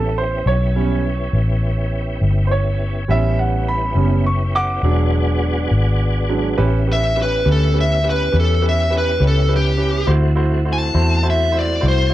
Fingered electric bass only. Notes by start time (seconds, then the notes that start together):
Already playing: A1
0.46 B1
1.33 A1
2.21 G1
3.09 A1
3.95 F#1
4.83 E1
5.71 G#1
6.58 A1
7.46 D2
8.34 E2
9.20 C#2
10.07 D2
10.95 E2
11.83 C2